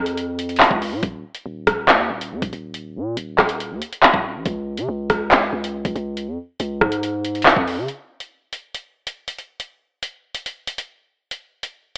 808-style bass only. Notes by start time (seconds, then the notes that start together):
Already playing: F2
0.71 C#2
0.92 A#2
1.03 D#1
1.46 D#1
1.67 D#1
1.88 D#2
2.10 D#1
2.31 F#2
2.42 D#1
2.53 D#1
2.96 A#2
3.17 D#1
3.38 D#1
3.71 D#2
4.14 D#1
4.35 A#1
4.46 C#2
4.78 C#3
4.89 C#2
5.10 C#2
5.53 C#2
5.85 C#2
5.96 C#2
6.28 F2
6.60 C#2
6.81 G#2
7.56 F2
7.78 C#3